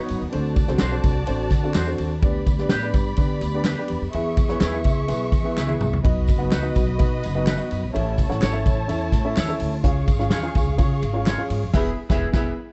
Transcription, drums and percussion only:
0.08 ride, tambourine
0.32 ride
0.56 kick, ride, tambourine
0.67 snare
0.78 snare, clap, ride, tambourine
1.03 kick, ride, tambourine
1.26 ride, tambourine
1.50 kick, snare, ride, tambourine
1.74 snare, clap, ride, tambourine
1.98 ride, tambourine
2.23 kick, ride, tambourine
2.47 kick, ride, tambourine
2.58 snare
2.69 snare, clap, ride, tambourine
2.94 kick, ride, tambourine
3.17 kick, ride, tambourine
3.41 snare, ride, tambourine
3.64 snare, clap, ride, tambourine
3.88 ride
4.13 ride
4.37 kick, ride, tambourine
4.49 snare
4.61 snare, clap, ride, tambourine
4.84 kick, ride, tambourine
5.08 ride, tambourine
5.32 kick, ride, tambourine
5.57 snare, clap, tambourine
5.69 high tom
5.81 mid tom, tambourine
5.93 floor tom
6.05 kick, ride
6.28 kick, ride, tambourine, muted conga
6.52 snare, clap, ride, tambourine, high conga
6.75 kick, ride, tambourine, muted conga, low conga
6.87 low conga
6.99 kick, ride, tambourine, muted conga
7.23 ride, tambourine
7.47 snare, clap, ride, tambourine, high conga
7.59 high conga
7.71 ride, tambourine
7.95 ride, tambourine
8.18 kick, ride, tambourine, muted conga
8.31 snare
8.41 snare, clap, ride, tambourine, high conga
8.66 kick, ride, tambourine, muted conga, low conga
8.89 ride, tambourine
9.12 kick, snare, ride, tambourine
9.37 snare, clap, ride, tambourine, high conga
9.48 high conga
9.60 open hi-hat, ride, tambourine
9.84 kick, hi-hat pedal, ride, tambourine
10.07 kick, ride, tambourine, muted conga
10.20 snare
10.31 snare, clap, ride, tambourine, high conga
10.55 kick, ride, tambourine, muted conga, low conga
10.67 low conga
10.78 kick, ride, tambourine, muted conga
11.02 ride, tambourine
11.27 snare, clap, ride, tambourine, high conga
11.38 high conga
11.50 open hi-hat, ride, tambourine
11.73 kick, snare, crash
12.10 kick, snare
12.34 kick, snare

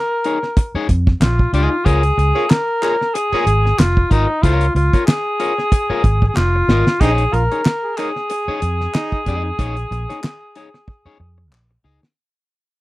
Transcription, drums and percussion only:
0.24 closed hi-hat
0.43 snare
0.57 kick, closed hi-hat
0.89 kick, closed hi-hat
1.07 kick, snare
1.21 snare, clap, closed hi-hat
1.39 kick
1.54 closed hi-hat
1.86 kick, closed hi-hat
2.03 closed hi-hat
2.19 closed hi-hat
2.50 snare, clap, closed hi-hat
2.83 clap, closed hi-hat
3.01 snare
3.15 closed hi-hat
3.47 closed hi-hat
3.66 snare
3.79 snare, clap, closed hi-hat
3.97 kick
4.11 kick, closed hi-hat
4.43 kick, closed hi-hat
4.61 closed hi-hat
4.76 closed hi-hat
4.93 kick, snare, closed hi-hat
5.08 snare, clap, closed hi-hat
5.40 closed hi-hat
5.58 snare
5.72 kick, closed hi-hat
6.04 kick, closed hi-hat
6.22 kick
6.37 snare, clap
6.69 snare
6.87 snare
7.01 kick, closed hi-hat
7.18 closed hi-hat
7.34 closed hi-hat
7.52 closed hi-hat
7.65 snare, clap, closed hi-hat
7.97 clap, closed hi-hat
8.16 snare
8.30 closed hi-hat
8.62 closed hi-hat
8.81 snare
8.94 snare, clap, closed hi-hat
9.12 kick
9.26 kick, closed hi-hat
9.59 kick, closed hi-hat
9.77 closed hi-hat
9.92 closed hi-hat
10.10 snare, closed hi-hat
10.23 snare, clap, closed hi-hat
10.55 closed hi-hat
10.74 snare
10.88 kick
11.52 clap
12.03 snare

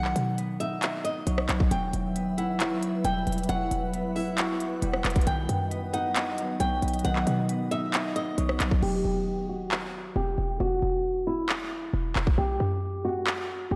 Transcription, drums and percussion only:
0.05 clap
0.16 closed hi-hat
0.38 closed hi-hat
0.60 closed hi-hat
0.82 clap, closed hi-hat
1.05 closed hi-hat
1.27 closed hi-hat
1.38 cross-stick
1.49 clap, closed hi-hat
1.60 kick
1.71 closed hi-hat
1.93 closed hi-hat
2.16 closed hi-hat
2.38 closed hi-hat
2.60 clap, closed hi-hat
2.83 closed hi-hat
3.05 closed hi-hat
3.27 closed hi-hat
3.32 closed hi-hat
3.38 closed hi-hat
3.43 closed hi-hat
3.49 closed hi-hat
3.71 closed hi-hat
3.94 closed hi-hat
4.16 open hi-hat
4.38 clap, closed hi-hat
4.60 closed hi-hat
4.82 closed hi-hat
4.93 cross-stick
5.05 clap, closed hi-hat
5.10 closed hi-hat
5.16 kick, closed hi-hat
5.21 closed hi-hat
5.27 closed hi-hat
5.49 closed hi-hat
5.71 closed hi-hat
5.94 closed hi-hat
6.16 clap, closed hi-hat
6.38 closed hi-hat
6.60 closed hi-hat
6.82 closed hi-hat
6.88 closed hi-hat
6.94 closed hi-hat
6.99 closed hi-hat
7.05 closed hi-hat
7.16 clap
7.27 closed hi-hat
7.49 closed hi-hat
7.71 closed hi-hat
7.94 clap, closed hi-hat
8.16 closed hi-hat
8.38 closed hi-hat
8.49 cross-stick
8.60 clap, closed hi-hat
8.71 kick
8.83 crash
9.71 clap
11.49 clap
12.16 clap
12.27 kick
13.27 clap

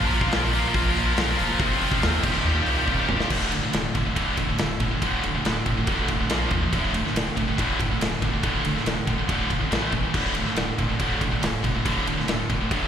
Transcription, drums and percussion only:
0.11 open hi-hat
0.21 kick
0.32 snare, open hi-hat
0.53 open hi-hat
0.74 kick, open hi-hat
0.96 open hi-hat
1.17 snare, open hi-hat
1.39 open hi-hat
1.60 kick, open hi-hat
1.81 open hi-hat
1.92 kick
2.02 snare, open hi-hat
2.23 kick, crash
2.66 open hi-hat
2.88 kick
3.09 mid tom
3.20 snare
3.30 kick, crash
3.52 ride
3.73 snare, ride
3.95 kick, ride
4.16 kick, ride
4.37 kick, ride
4.58 snare, ride
4.80 kick, ride
5.02 kick, ride
5.24 ride
5.45 snare, ride
5.66 kick, ride
5.87 kick, ride
6.08 kick, ride
6.30 snare, ride
6.51 kick, ride
6.73 kick, ride
6.94 ride
7.07 snare
7.16 snare, ride
7.37 kick, ride
7.58 kick, ride
7.80 kick, ride
8.01 snare, ride
8.22 kick, ride
8.43 kick, ride
8.65 ride
8.77 snare
8.86 snare, ride
9.07 kick, ride
9.29 kick, ride
9.50 kick, ride
9.72 snare, ride
9.92 kick, ride
10.14 kick, crash
10.35 ride
10.47 snare
10.56 snare, ride
10.78 kick, ride
11.00 kick, ride
11.21 kick, ride
11.43 snare, ride
11.64 kick, ride
11.86 kick, ride
12.07 ride
12.20 snare
12.28 snare, ride
12.50 kick, ride
12.71 kick, ride

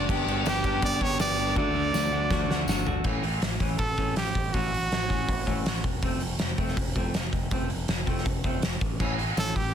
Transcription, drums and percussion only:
0.09 kick, crash
0.28 crash
0.46 snare, tambourine, crash
0.64 kick, crash
0.82 kick, crash
1.01 kick, crash
1.19 snare, tambourine, crash
1.37 crash
1.56 kick, high tom
1.94 snare, tambourine
2.31 kick, snare
2.51 snare
2.68 snare, tambourine
2.87 floor tom
3.04 kick, crash
3.23 open hi-hat
3.42 snare, open hi-hat
3.60 kick, open hi-hat
3.78 kick, open hi-hat
3.98 kick, open hi-hat
4.16 snare, open hi-hat
4.27 snare
4.35 kick
4.54 kick, open hi-hat
4.74 open hi-hat
4.92 snare, open hi-hat
5.10 kick, open hi-hat
5.29 kick, open hi-hat
5.47 kick, open hi-hat
5.66 snare, open hi-hat
5.76 snare
5.84 kick, open hi-hat
6.02 kick, open hi-hat
6.20 open hi-hat
6.39 snare, open hi-hat
6.58 kick, open hi-hat
6.68 snare
6.77 kick, open hi-hat
6.96 kick, open hi-hat
7.14 snare, open hi-hat
7.33 kick, open hi-hat
7.51 kick, open hi-hat
7.70 open hi-hat
7.88 snare, open hi-hat
8.07 kick, open hi-hat
8.18 snare
8.26 kick, open hi-hat
8.44 kick, open hi-hat
8.62 snare, open hi-hat
8.81 kick, open hi-hat
9.00 kick, crash
9.19 open hi-hat
9.37 snare, open hi-hat, tambourine
9.56 kick, open hi-hat

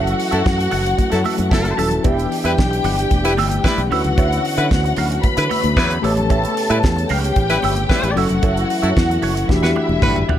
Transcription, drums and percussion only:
0.07 closed hi-hat
0.20 open hi-hat
0.32 closed hi-hat
0.46 kick, snare, muted conga
0.59 closed hi-hat, muted conga
0.71 open hi-hat, low conga
0.86 closed hi-hat
0.98 kick, closed hi-hat, muted conga, high conga
1.12 snare, closed hi-hat, muted conga
1.25 open hi-hat, high conga
1.38 closed hi-hat, high conga
1.51 kick, snare, high conga
1.64 closed hi-hat, muted conga, high conga
1.79 open hi-hat
1.91 closed hi-hat, low conga
2.04 kick, closed hi-hat, muted conga
2.19 closed hi-hat, muted conga
2.32 open hi-hat
2.45 closed hi-hat
2.58 kick, snare, muted conga
2.73 closed hi-hat
2.84 open hi-hat, low conga
2.99 closed hi-hat
3.11 kick, closed hi-hat, muted conga, high conga
3.25 snare, closed hi-hat, muted conga
3.38 open hi-hat, high conga
3.51 closed hi-hat, high conga
3.64 kick, snare, muted conga, high conga
3.77 closed hi-hat, high conga
3.92 open hi-hat
4.04 closed hi-hat, low conga
4.17 kick, closed hi-hat, muted conga
4.33 closed hi-hat
4.45 open hi-hat
4.58 closed hi-hat
4.71 kick, snare, muted conga
4.84 closed hi-hat, muted conga
4.96 open hi-hat, low conga
5.12 closed hi-hat
5.23 kick, closed hi-hat, muted conga, high conga
5.37 closed hi-hat
5.51 open hi-hat, high conga
5.63 closed hi-hat, high conga
5.77 kick, snare, muted conga, high conga
5.90 closed hi-hat, high conga
6.04 open hi-hat
6.17 closed hi-hat, low conga
6.30 kick, closed hi-hat, muted conga
6.43 closed hi-hat, muted conga
6.57 open hi-hat
6.71 closed hi-hat
6.83 kick, snare, muted conga
6.96 closed hi-hat, muted conga
7.09 open hi-hat, low conga
7.24 closed hi-hat
7.36 kick, closed hi-hat, high conga
7.50 snare, closed hi-hat, muted conga
7.62 open hi-hat, high conga
7.76 closed hi-hat, high conga
7.89 kick, snare, high conga
8.03 closed hi-hat, muted conga, high conga
8.17 open hi-hat
8.29 closed hi-hat, low conga
8.43 kick, closed hi-hat
8.57 closed hi-hat, muted conga
8.70 open hi-hat
8.83 closed hi-hat
8.96 kick, snare, muted conga
9.11 closed hi-hat
9.22 open hi-hat, low conga
9.37 closed hi-hat
9.49 kick, snare, muted conga, high conga
9.64 snare, muted conga
9.76 high conga
9.89 high conga
10.02 kick, mid tom, high conga
10.16 mid tom, muted conga, high conga
10.29 floor tom

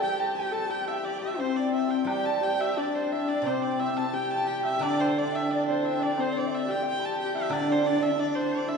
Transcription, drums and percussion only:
0.02 low woodblock
0.70 high woodblock
1.39 low woodblock
2.07 high woodblock
3.44 high woodblock
4.81 high woodblock
6.17 high woodblock
7.51 high woodblock

